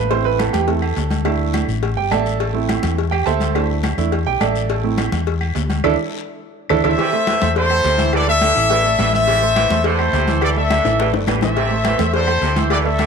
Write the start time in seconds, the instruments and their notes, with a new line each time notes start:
Already playing: fingered electric bass A1, grand piano B4
0.10 grand piano A3 C4 E4 C5, cowbell, high conga, low agogo, long guiro
0.25 grand piano B4, high conga
0.39 grand piano A4, cowbell, high conga, low timbale, low agogo, short guiro, claves
0.53 fingered electric bass E2, grand piano G4, cowbell, high conga, low agogo, short guiro
0.68 grand piano A3 C4 E4 A4, cowbell, high conga, long guiro
0.82 high conga, low agogo, claves
0.96 fingered electric bass D2, cowbell, high conga, low timbale, short guiro
1.10 cowbell, high conga, low agogo, short guiro
1.25 grand piano A3 D4 E4, cowbell, high conga, low agogo, long guiro, claves
1.40 high conga
1.54 cowbell, high conga, low timbale, low agogo, short guiro, claves
1.68 fingered electric bass A1, high conga, short guiro
1.83 cowbell, high conga, low agogo, long guiro
1.97 fingered electric bass G1, grand piano G4 G5, high conga
2.11 fingered electric bass A1, grand piano A4 D5 E5 A5, cowbell, high conga, low timbale, low agogo, short guiro, claves
2.26 short guiro
2.40 cowbell, high conga, low agogo, long guiro
2.53 grand piano A3 C4 E4, high conga
2.69 cowbell, high conga, low timbale, low agogo, short guiro, claves
2.83 fingered electric bass E2, cowbell, high conga, low agogo, short guiro
2.97 cowbell, high conga, long guiro
3.11 grand piano G4 G5, high conga, low agogo, claves
3.26 fingered electric bass D2, grand piano A4 C5 E5 A5, cowbell, high conga, low timbale, short guiro
3.40 cowbell, high conga, low agogo, short guiro
3.55 grand piano A3 D4 E4, cowbell, high conga, low agogo, long guiro, claves
3.69 high conga
3.83 cowbell, high conga, low timbale, low agogo, short guiro, claves
3.98 fingered electric bass E2, grand piano A3 D4 E4, high conga, short guiro
4.12 cowbell, high conga, low agogo, long guiro
4.26 fingered electric bass B1, grand piano G4 G5, high conga
4.41 fingered electric bass A1, grand piano A4 D5 E5 A5, cowbell, high conga, low timbale, low agogo, short guiro, claves
4.55 short guiro
4.69 cowbell, high conga, low agogo, long guiro
4.84 grand piano A3 C4 E4, high conga
4.98 cowbell, high conga, low timbale, low agogo, short guiro, claves
5.12 fingered electric bass E2, cowbell, high conga, low agogo, short guiro
5.27 cowbell, high conga, long guiro
5.41 high conga, low agogo, claves
5.55 fingered electric bass D2, cowbell, high conga, low timbale, short guiro
5.70 cowbell, high conga, low agogo, short guiro
5.84 fingered electric bass D2, grand piano D4 E4 A4, cowbell, low conga, high timbale, long guiro, claves
6.69 fingered electric bass D2, grand piano D4 E4 A4, cowbell, low conga, high timbale, long guiro, claves
6.84 fingered electric bass D2, grand piano D4 E4 A4, trumpet section A4 C5 E5, cowbell, low conga, high timbale, long guiro, claves
6.98 saxophone section C3, grand piano E3 E4 E5, cowbell, high conga, low agogo, long guiro
7.13 grand piano A3 A4 C5, high conga
7.27 saxophone section E3, cowbell, high conga, low timbale, low agogo, short guiro, claves
7.41 fingered electric bass E2, grand piano A3 A4 C5, cowbell, high conga, low agogo, short guiro
7.55 saxophone section D3, trumpet section E4 A4 C5, cowbell, high conga, long guiro
7.70 grand piano A3 A4 C5, high conga, low agogo, claves
7.84 fingered electric bass D2, saxophone section C3, cowbell, high conga, low timbale, short guiro
7.98 grand piano E3 E4 E5, cowbell, high conga, low agogo, short guiro
8.13 saxophone section E3, trumpet section A4 D5, cowbell, high conga, low agogo, long guiro, claves
8.27 grand piano A3 A4 D5, trumpet section A4 E5, high conga
8.41 saxophone section D3, cowbell, high conga, low timbale, low agogo, short guiro, claves
8.55 fingered electric bass A1, grand piano E3 E4 E5, high conga, short guiro
8.70 saxophone section E3, grand piano A3 A4 D5, cowbell, high conga, low agogo
8.84 grand piano A3 A4 D5, high conga
8.98 fingered electric bass A1, saxophone section E3, cowbell, high conga, low timbale, low agogo, short guiro, claves
9.13 grand piano E3 E4 E5, trumpet section A4 C5 E5, high conga, short guiro
9.27 saxophone section C3, grand piano E3 E4, cowbell, high conga, low agogo, long guiro
9.42 grand piano A3 A4 C5, high conga
9.55 saxophone section E3, cowbell, high conga, low timbale, low agogo, short guiro, claves
9.70 fingered electric bass E2, grand piano A3 A4 C5, cowbell, high conga, low agogo, short guiro
9.84 saxophone section D3, trumpet section E4 A4 C5, cowbell, high conga, long guiro
9.99 grand piano A3 A4 C5, high conga, low agogo, claves
10.13 fingered electric bass D2, saxophone section C3, cowbell, high conga, low timbale, short guiro
10.27 grand piano E3 E4 E5, cowbell, high conga, low agogo, short guiro
10.41 saxophone section E3, trumpet section A4 D5, cowbell, high conga, low agogo, claves
10.56 grand piano A3 A4 D5, trumpet section A4 E5, high conga
10.70 saxophone section D3, cowbell, high bongo, high conga, low timbale, low agogo, short guiro, claves
10.84 fingered electric bass A1, grand piano E3 E4 E5, low bongo, high conga, short guiro
10.99 saxophone section E3, grand piano A3 A4 D5, cowbell, high bongo, high conga, low agogo, long guiro
11.13 fingered electric bass G1, grand piano A3 A4 D5, low bongo, high conga
11.27 fingered electric bass A1, saxophone section E3, cowbell, low bongo, high conga, low timbale, low agogo, short guiro, claves
11.41 grand piano E3 E4 E5, trumpet section A4 C5 E5, low bongo, high conga, short guiro
11.56 saxophone section C3, grand piano E3 E4 E5, cowbell, high conga, low agogo, long guiro
11.70 grand piano A3 A4 C5, high conga
11.84 saxophone section E3, cowbell, high conga, low timbale, low agogo, short guiro, claves
11.98 fingered electric bass E2, grand piano A3 A4 C5, cowbell, high conga, low agogo, short guiro
12.13 saxophone section D3, trumpet section E4 A4 C5, cowbell, high conga, long guiro
12.27 grand piano A3 A4 C5, high conga, low agogo, claves
12.41 fingered electric bass D2, saxophone section C3, cowbell, high conga, low timbale, short guiro
12.56 grand piano E3 E4 E5, cowbell, high conga, low agogo, short guiro
12.70 saxophone section E3, trumpet section A4 D5, cowbell, high conga, low agogo, long guiro, claves
12.84 grand piano A3 A4 D5, trumpet section A4 E5, high conga
12.99 saxophone section D3, cowbell, high conga, low timbale, low agogo, short guiro, claves